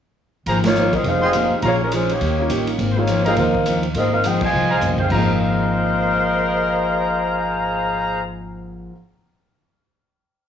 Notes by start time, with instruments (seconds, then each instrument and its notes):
0.46 upright bass G#1, steel-string acoustic guitar G#2 F3 A#3 C4, trumpet section G#4 C5 F5 A#5, kick, ride
0.64 saxophone section A#3 D#4 F4 C#5, snare, ride
0.76 steel-string acoustic guitar G#2 F3 A#3 C4, hi-hat pedal
0.93 saxophone section C4 F4 A#4 D#5, kick, ride
1.04 upright bass F1, steel-string acoustic guitar F3 A#3 D#4, saxophone section D#4 G#4 C5 F5, kick, ride
1.08 steel-string acoustic guitar G#4
1.22 trumpet section G#4 D#5 G5 C6
1.33 steel-string acoustic guitar F3 A#3 D#4 G#4, grand piano G#3 A#3 C4 D#4 G4, hi-hat pedal, ride
1.53 muted upright bass stroke
1.62 upright bass A#1, steel-string acoustic guitar A#2 F3 G#3, saxophone section A#3 F4 G#4 C#5, trumpet section G#4 C#5 F5 A#5, kick, ride
1.67 steel-string acoustic guitar C#4
1.82 saxophone section G#3 C#4 F4 A#4
1.91 steel-string acoustic guitar A#2 F3 G#3 C#4, saxophone section G#3 C#4 F4 C5, hi-hat pedal, ride
2.09 saxophone section A#3 D#4 G4 C#5, ride
2.21 upright bass D#2, steel-string acoustic guitar D#3 A#3 C#4 G4, kick, ride
2.39 grand piano G3 A#3 C#4 D#4 F4
2.49 upright bass A1, steel-string acoustic guitar D#3 A#3 C#4 G4, hi-hat pedal, ride
2.67 ride
2.78 upright bass G#1, steel-string acoustic guitar G#2 F3 A#3 C4, kick, ride
2.91 saxophone section C5
2.97 grand piano G#3 A#3 C4 D#4 F4, saxophone section A#3 D#4 F4 C#5
3.07 steel-string acoustic guitar G#2 F3 A#3 C4, hi-hat pedal, ride
3.24 grand piano G#3 A#3 C4, saxophone section C4 F4 A#4 D#5, trumpet section G#4 C5 F5 A#5, ride
3.29 grand piano D#4 F4
3.36 upright bass D#2, steel-string acoustic guitar G#2 F3 A#3 C4, saxophone section D#4 A#4 C5 F5, kick, ride
3.55 kick
3.66 steel-string acoustic guitar G#2 F3 A#3 C4, hi-hat pedal, ride
3.83 ride
3.94 upright bass G#1, steel-string acoustic guitar G#2 F3, grand piano G#3 A#3 C4 D#4 F4, saxophone section C4 F4 A#4 D#5, kick, ride
3.99 steel-string acoustic guitar A#3 C4
4.12 saxophone section D#4 A#4 C5 F5
4.24 steel-string acoustic guitar G#2 F3 A#3 C4, saxophone section D#4 G#4 C5 G5, hi-hat pedal, ride
4.41 saxophone section F4 C5 D#5 G#5, kick, crash
4.53 upright bass C2, steel-string acoustic guitar G#2 F3 A#3 C4
4.71 trumpet section G#4 C5 F5 A#5
4.81 steel-string acoustic guitar G#2 F3 A#3 C4, floor tom, hi-hat pedal
4.98 trumpet section G#4 C5 F5 G5, floor tom
5.09 upright bass G#1, grand piano G#2 G#3 A#3 C4, steel-string acoustic guitar F3, trumpet section G#4 C5 F5 A#5, kick, crash
5.14 steel-string acoustic guitar A#3, grand piano F4, saxophone section A#4 C5 D#5 F5
5.23 steel-string acoustic guitar C4